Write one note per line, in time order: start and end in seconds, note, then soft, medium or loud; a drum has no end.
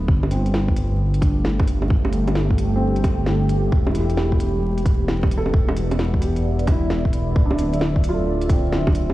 0.00 0.27 F3 medium
0.00 0.27 B3 medium
0.00 0.30 D4 medium
0.08 3.70 G1 medium
0.08 3.72 A3 medium
0.08 kick loud
0.23 low bongo medium
0.31 2.01 C4 medium
0.31 closed hi-hat medium
0.38 8.08 G4 medium
0.46 closed hi-hat soft
0.54 snare loud
0.68 kick medium
0.77 3.72 F5 medium
0.77 closed hi-hat soft
1.14 closed hi-hat soft
1.21 2.90 D4 medium
1.21 kick loud
1.21 closed hi-hat soft
1.45 snare loud
1.59 kick loud
1.59 low bongo medium
1.67 closed hi-hat medium
1.82 low bongo soft
1.90 kick loud
2.05 low bongo medium
2.13 closed hi-hat medium
2.28 closed hi-hat soft
2.28 low bongo medium
2.35 snare loud
2.51 kick medium
2.58 closed hi-hat medium
2.76 3.91 C4 medium
2.96 closed hi-hat soft
3.04 kick loud
3.04 closed hi-hat soft
3.04 low bongo medium
3.26 snare loud
3.49 closed hi-hat soft
3.71 7.34 E1 medium
3.71 7.35 B3 medium
3.71 kick loud
3.87 low bongo medium
3.91 5.57 E4 medium
3.95 4.32 G4 medium
3.95 closed hi-hat medium
4.10 closed hi-hat soft
4.17 snare medium
4.26 9.13 D5 medium
4.32 5.98 G4 medium
4.32 kick medium
4.40 closed hi-hat medium
4.50 9.13 E5 medium
4.78 closed hi-hat soft
4.86 kick loud
4.86 closed hi-hat medium
5.08 snare loud
5.23 kick loud
5.23 low bongo medium
5.31 closed hi-hat medium
5.37 7.05 A4 medium
5.46 low bongo soft
5.54 kick loud
5.69 low bongo medium
5.77 closed hi-hat medium
5.91 closed hi-hat soft
5.91 low bongo medium
5.99 snare loud
6.14 kick medium
6.21 7.54 G4 medium
6.21 closed hi-hat medium
6.36 closed hi-hat soft
6.59 closed hi-hat soft
6.67 kick loud
6.67 closed hi-hat medium
6.67 low bongo medium
6.72 7.55 E4 medium
6.90 snare loud
7.05 kick medium
7.13 closed hi-hat medium
7.36 9.13 D1 medium
7.36 9.13 D4 medium
7.36 kick loud
7.46 9.11 D4 medium
7.51 low bongo medium
7.59 9.13 F3 medium
7.59 closed hi-hat medium
7.59 cabasa medium
7.74 closed hi-hat soft
7.81 snare loud
7.96 kick medium
8.04 closed hi-hat medium
8.04 cabasa medium
8.09 9.13 F4 medium
8.14 9.13 A4 medium
8.41 closed hi-hat soft
8.49 9.13 C4 soft
8.49 kick loud
8.49 closed hi-hat medium
8.49 cabasa medium
8.72 snare loud
8.87 kick loud
8.87 low bongo medium
8.95 closed hi-hat medium
8.95 cabasa medium
9.10 low bongo medium